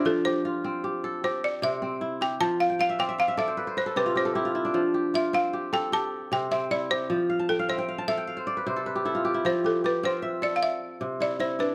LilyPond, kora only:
\new Staff \with { instrumentName = "Kora" } { \time 12/8 \key f \lydian \tempo 4. = 102 << { d'16 r16 g'8 f'4 g'4 g'4. c'4 g'8~ | g'8 r16 g''16 f''16 e''16 d''16 e''16 f''16 e''16 d''16 c''16 b'16 c''16 b'16 a'16 g'16 f'16 g'16 a'16 g'16 f'16 e'16 d'16~ | d'16 r16 g'8 f'4 g'4 g'4. c'4 g'8~ | g'8 f''16 a''16 g''16 f''16 e''16 g''16 f''16 a''16 f''16 g''16 f''16 c''16 d''16 b'16 c''16 a'16 b'16 g'16 a'16 f'16 g'16 e'16~ |
e'16 r16 g'8 g'8 f'8 e''4. r4 e'4 d'8 | } \\ { f4 r8 c'4 a'8 r4 c4 e'4 | f4 r8 c'4 a'8 r4 c4 e'4 | f4 r8 c'4 a'8 r4 c4 e'4 | f4 r8 c'4 a'8 r4 c4 e'4 |
f4 r8 c'4 a'8 r4 c4 e'4 | } >> }